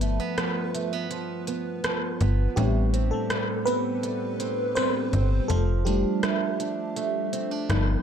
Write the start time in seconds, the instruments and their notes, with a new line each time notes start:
Already playing: fm bass G1, steel-string acoustic guitar G2, fm electric piano F3 A3 B3 B4
0.01 steel-string acoustic guitar A3, closed hi-hat
0.20 steel-string acoustic guitar B3
0.38 steel-string acoustic guitar F3, cross-stick, closed hi-hat
0.74 steel-string acoustic guitar A3, closed hi-hat
0.93 steel-string acoustic guitar B3
1.11 steel-string acoustic guitar F3, closed hi-hat
1.47 steel-string acoustic guitar B3, closed hi-hat
1.84 steel-string acoustic guitar F3, cross-stick, closed hi-hat
2.20 fm bass G1, steel-string acoustic guitar B3, closed hi-hat
2.56 fm bass A1, steel-string acoustic guitar A2, fm electric piano G3 B3 C4 D4 G4, closed hi-hat
2.94 steel-string acoustic guitar C4, closed hi-hat
3.11 fm electric piano A3 A4
3.30 steel-string acoustic guitar G3, cross-stick, closed hi-hat
3.66 fm electric piano B3 B4, steel-string acoustic guitar C4, closed hi-hat
4.03 steel-string acoustic guitar G3, closed hi-hat
4.40 steel-string acoustic guitar C4, closed hi-hat
4.75 steel-string acoustic guitar G3, fm electric piano C4 C5, cross-stick, closed hi-hat
5.13 fm bass G1, steel-string acoustic guitar C4, closed hi-hat
5.48 fm bass F1, steel-string acoustic guitar F3, fm electric piano A3 A4, closed hi-hat
5.85 fm electric piano G3 A3 D4 G4, steel-string acoustic guitar D4, closed hi-hat
6.23 steel-string acoustic guitar A3, cross-stick, closed hi-hat
6.60 steel-string acoustic guitar D4, closed hi-hat
6.96 steel-string acoustic guitar A3, closed hi-hat
7.33 steel-string acoustic guitar C4, closed hi-hat
7.51 steel-string acoustic guitar D4
7.69 fm bass G1, steel-string acoustic guitar G2, fm electric piano F3 B3 D#4, cross-stick, closed hi-hat